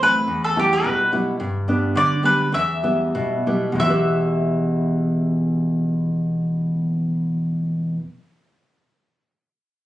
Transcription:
Already playing: E2
0.02 A3 C4 E4 B4
0.28 E2
0.44 A4
0.56 G3 B3 E4 G4
0.73 B4
0.84 B2
1.12 G3 B3 E4
1.40 G2
1.68 G3 B3 D4
1.95 D3 D5
2.23 G3 B3 D4 B4
2.52 E2 E5
2.83 G3 B3 E4
3.15 B2
3.47 G3 B3 E4
3.72 E2 B2
3.80 E3 B3 E5
3.87 G4 B4

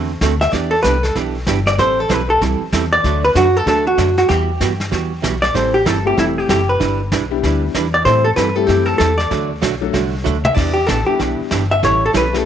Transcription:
Already playing: E2 D3 A3 C4 F#4 A4
0.21 D2 D3 A3 C4 F#4 A4, kick, snare, hi-hat pedal
0.41 E5, snare
0.52 E2 E3 B3 D4 G4 D5, brush sweep, kick, snare
0.71 A4
0.83 C2 E3 B3 D4 G4 B4, kick, snare, hi-hat pedal
1.03 A4, snare
1.15 B1 E3 B3 D4 G4, brush sweep, kick, snare
1.47 G1 E3 B3 D4 G4, kick, snare, hi-hat pedal
1.66 D5, snare
1.78 A1 E3 G3 C4 E4 A4 C5, brush sweep, kick, snare
2.00 A4
2.09 B1 E3 G3 C4 E4 A4 B4, kick, snare, hi-hat pedal
2.30 A4
2.41 C2 E3 G3 C4 E4 A4, brush sweep, kick, snare
2.72 E2 E3 G3 C4 E4 A4, kick, snare, hi-hat pedal
2.93 D5
3.04 D2 D3 F#3 A3 D4 F#4, brush sweep, kick, snare
3.25 B4
3.35 F#2 D3 F#3 A3 D4 F#4, kick, snare, hi-hat pedal
3.57 A4
3.66 D2 D3 F#3 A3 D4 F#4 A4, brush sweep, kick, snare
3.87 F#4
3.98 F#2 D3 F#3 A3 D4 F#4, kick, snare, hi-hat pedal
4.17 F#4, snare
4.29 E2 E3 G3 B3 F#4 G4, brush sweep, kick, snare
4.60 G2 E3 G3 B3 F#4, kick, snare, hi-hat pedal
4.80 snare
4.91 E2 E3 G3 B3 F#4, brush sweep, kick, snare
5.22 B1 E3 G3 B3 F#4, kick, snare, hi-hat pedal
5.42 D5, snare
5.54 A1 E3 G3 C4 E4 A4 C5, brush sweep, kick, snare
5.74 G4
5.85 G1 E3 G3 C4 E4 A4, kick, snare, hi-hat pedal
6.05 G3 A3 C4 E4 G4
6.17 E1 E3 G3 C4 E4 A4, brush sweep, kick, snare
6.38 G4
6.49 F#1 E3 G3 C4 E4 G4 A4, kick, snare, hi-hat pedal
6.69 B4
6.80 G1 G3 D4 E4 B4, brush sweep, kick, snare
7.12 B1 G3 D4 E4 B4, kick, snare, hi-hat pedal
7.31 G3 B3 D4 E4 G4
7.43 D2 G3 D4 E4 B4, brush sweep, kick, snare
7.74 E2 G3 D4 E4 B4, kick, snare, hi-hat pedal
7.94 D5
8.05 A2 E3 G3 C4 E4 A4 C5, brush sweep, kick, snare
8.24 A4
8.36 G2 E3 G3 C4 E4 A4 B4, kick, snare, hi-hat pedal
8.56 G3 A3 C4 E4 G4 A4
8.67 F#2 E3 G3 C4 E4 G4 A4, brush sweep, kick, snare
8.86 A4
8.98 E2 E3 G3 C4 E4 A4, kick, snare, hi-hat pedal
9.18 D5, snare
9.30 D2 D3 F#3 A3 D4 F#4, brush sweep, kick, snare
9.62 B1 D3 F#3 A3 D4 F#4, kick, snare, hi-hat pedal
9.81 F#3 A3 D4 F#4 A4
9.93 C2 D3 F#3 A3 D4 F#4, brush sweep, kick, snare
10.24 D2 D3 F#3 A3 D4 F#4, hi-hat pedal, mid tom
10.45 E5, mid tom
10.54 E2 E3 B3 D4 G4 D5, brush sweep, kick, snare, crash
10.74 G4
10.87 A1 E3 B3 D4 G4 A4, kick, snare, hi-hat pedal
11.06 G3 B3 D4 E4 G4
11.19 B1 E3 B3 D4 G4, brush sweep, kick, snare
11.41 muted upright bass stroke
11.51 G1 E3 B3 D4 G4, kick, snare, hi-hat pedal
11.71 E5
11.83 A1 E3 G3 C#4 E4 A4 C#5, brush sweep, kick, snare
12.06 A4
12.13 B1 E3 G3 C#4 E4 A4 B4, kick, snare, hi-hat pedal
12.33 G3 A3 C#4 E4 G4 A4, snare

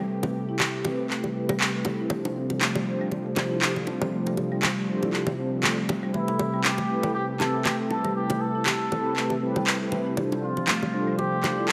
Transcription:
Already playing: C3 A3 G4
0.09 C4 E4 G4 A4 B4
0.23 A3, high bongo, low bongo
0.49 C4 E4 G4 A4 B4
0.60 G4, clap, low bongo
0.85 C4 E4 G4 A4 B4, low bongo
1.10 A3, clap
1.24 G3, low bongo
1.35 C4 E4 G4 A4 B4
1.49 G3, low bongo
1.60 clap
1.74 A3 C4 E4 G4 A4 B4
1.85 high bongo, low bongo
2.00 E4
2.10 F3 G3 F4 G4 C5, low bongo
2.25 high bongo
2.36 C4
2.50 D4 F4 G4 A4 C5, low bongo
2.61 A3, clap, high bongo
2.75 G3, low bongo
2.86 D4 F4 G4 A4 C5
3.01 G3
3.11 D4 A4, low bongo
3.26 A3
3.36 D4 F4 G4 A4 C5, clap, high bongo, low bongo
3.51 E4
3.62 G4, clap
3.76 D4 F4 G4 A4, low bongo
3.87 C4, high bongo
4.02 low bongo
4.12 A3 D4 F4 A4
4.27 G3, high bongo
4.37 low bongo
4.52 G3 D4 F4 A4
4.63 clap, low bongo
4.77 A3
4.88 D4 F4 G4 A4 C5
5.03 E4, low bongo
5.13 D4 F4 G4 A4 C5, clap
5.27 low bongo
5.38 C4 D4 F4 G4 A4 C5
5.53 D4 F4 G4 A4
5.63 A3 D4 F4 G4 A4 C5, clap, low bongo
5.78 G3
5.89 high bongo, low bongo
6.03 G3 D4 F4 G4 A4 C5
6.14 A3 C4 E4 G4 A4 B4, low bongo
6.28 high bongo
6.39 G3, low bongo
6.54 G3 C4 E4
6.64 G4, clap, high bongo
6.78 A3, low bongo
6.90 C4 E4 G4 A4 B4
7.03 E4, low bongo
7.14 C4 G4
7.40 C4 E4 G4 A4 B4, clap, high bongo, low bongo
7.65 A3 G4, clap, low bongo
7.80 C4 E4 G4 A4 B4
7.90 G3 A4, high bongo
8.04 G3, low bongo
8.16 C4 E4 G4 A4 B4
8.30 A3, high bongo, low bongo
8.41 A4
8.55 C4 E4 G4 A4 B4
8.66 G4, clap, low bongo
8.91 C4 E4 G4 A4 B4, low bongo
9.17 A3 C4 E4 G4 A4 B4, clap
9.30 low bongo
9.42 G3 C4 E4 G4 A4 B4
9.56 G3, low bongo
9.67 clap
9.81 A3 C4 E4 G4 A4 B4
9.92 high bongo, low bongo
10.06 E4
10.17 C3 F3 G3 D4 F4 G4, low bongo
10.32 high bongo
10.43 C4 F4
10.57 D4 F4 G4 A4 C5, low bongo
10.68 A3, clap, high bongo
10.83 low bongo
10.93 G3 D4 F4 G4 A4 C5
11.07 G3
11.18 D4 F4 G4, low bongo
11.33 A3
11.43 D4 F4 G4 A4 C5, clap, high bongo, low bongo
11.58 E4
11.68 G4 A4, clap

